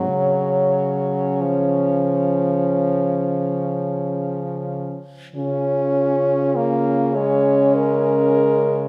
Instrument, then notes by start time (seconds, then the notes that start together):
french horn
Already playing: F#3
0.07 C#3 C#4 C#5
1.41 F3
5.35 C#3 C#4 F4
6.56 A#3
7.14 G#3 C#5
7.75 A#4